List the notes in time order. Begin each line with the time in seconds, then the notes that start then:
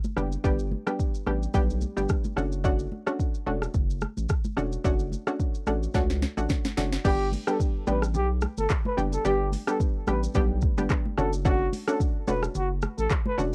0.04 high conga, shaker
0.16 F#1 G3 B3 D4 G4, cross-stick, low conga, shaker
0.32 shaker
0.44 G1 G3 B3 D4 G4, kick, low conga, shaker
0.59 shaker
0.72 high conga
0.87 G3 B3 D4 G4, cross-stick, shaker
0.99 kick, shaker
1.14 shaker
1.26 A1 G3 B3 D4 G4, cross-stick, high conga
1.43 shaker
1.54 B1 G3 B3 D4 G4, kick, low conga, shaker
1.70 shaker
1.81 high conga, shaker
1.97 G1 G3 B3 D4 G4, high conga, shaker
2.09 kick, cross-stick, low conga, shaker
2.24 high conga, shaker
2.36 F#1 A3 C#4 D4 F#4, cross-stick, low conga, shaker
2.52 shaker
2.64 A3 C#4 D4 F#4, kick, low conga, shaker
2.79 shaker
2.92 high conga
3.07 A3 C#4 D4 F#4, cross-stick, shaker
3.20 kick, shaker
3.35 shaker
3.46 E1 A3 C#4 D4 F#4, high conga
3.62 cross-stick, shaker
3.74 F#1, kick, low conga, shaker
3.90 shaker
4.01 cross-stick, high conga, shaker
4.17 A1, high conga, shaker
4.29 kick, cross-stick, low conga, shaker
4.44 high conga, shaker
4.57 E1 A3 C#4 D4 F#4, cross-stick, low conga, shaker
4.72 shaker
4.84 F#1 A3 C#4 D4 F#4, kick, low conga, shaker
4.99 shaker
5.12 high conga, shaker
5.27 A3 C#4 D4 F#4, cross-stick, shaker
5.40 kick, shaker
5.55 shaker
5.67 A1 A3 C#4 D4 F#4, cross-stick, high conga, shaker
5.83 shaker
5.94 C#2 A3 C#4 D4 F#4, kick, snare, low conga, shaker
6.10 snare, shaker
6.22 snare, high conga
6.37 A1 A3 C#4 D4 F#4, high conga, shaker
6.49 kick, snare, low conga, shaker
6.64 snare, high conga, shaker
6.77 F#1 A3 C#4 D4 F#4, snare, high conga, low conga, shaker
6.92 snare, shaker
7.05 G1 G3 B3 D4 G4, kick, crash, low conga, shaker
7.32 open hi-hat, high conga, shaker
7.47 G3 B3 D4 G4 A4, cross-stick, shaker
7.60 kick, shaker
7.87 A1 G3 B3 D4 G4 B4, high conga, shaker
8.02 cross-stick, shaker
8.14 B1 G4, low conga, shaker
8.41 cross-stick, high conga, shaker
8.58 G1 A4, high conga, shaker
8.69 kick, cross-stick, clap, low conga, shaker
8.85 B4, high conga
8.97 F#1 G3 B3 D4 G4, low conga, shaker
9.13 A4, shaker
9.25 G1 G3 B3 D4 G4, low conga, shaker
9.52 open hi-hat, high conga, shaker
9.67 G3 B3 D4 G4 A4, cross-stick, shaker
9.80 kick, shaker
10.07 A1 G3 B3 D4 G4 B4, cross-stick, high conga, shaker
10.23 shaker
10.34 B1 G3 B3 D4 G4, kick, low conga, shaker
10.62 kick, high conga, shaker
10.78 G1 G3 B3 D4 G4, high conga, shaker
10.90 kick, cross-stick, clap, low conga, shaker
11.06 high conga
11.18 F#1 A3 C#4 D4 F#4 A4, cross-stick, low conga, shaker
11.33 shaker
11.45 A3 C#4 D4 F#4, kick, low conga, shaker
11.73 open hi-hat, high conga, shaker
11.88 A3 C#4 D4 F#4 A4, cross-stick, shaker
12.00 kick, shaker
12.28 E1 A3 C#4 D4 F#4 B4, high conga, shaker
12.43 cross-stick, shaker
12.55 F#1 F#4, low conga, shaker
12.82 cross-stick, high conga, shaker
12.98 A1 A4, high conga, shaker
13.10 kick, cross-stick, clap, low conga, shaker
13.26 B4, high conga
13.38 E1 A3 C#4 D4 F#4, low conga, shaker